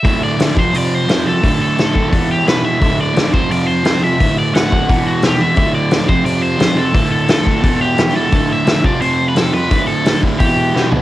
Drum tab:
HH |o-o-o-o-|o-o-o-o-|o-o-o-o-|o-o-o-o-|
SD |--o---o-|--o---o-|--o---o-|--o---o-|
FT |--------|--------|--------|--------|
BD |o--o----|o--oo---|o--o----|o--oo---|

HH |o-o-o-o-|o-o-o-o-|o-o-o-o-|o-o-o---|
SD |--o---o-|--o---o-|--o---o-|--o---o-|
FT |--------|--------|--------|-------o|
BD |o--o----|o--oo---|o--o----|o--oo---|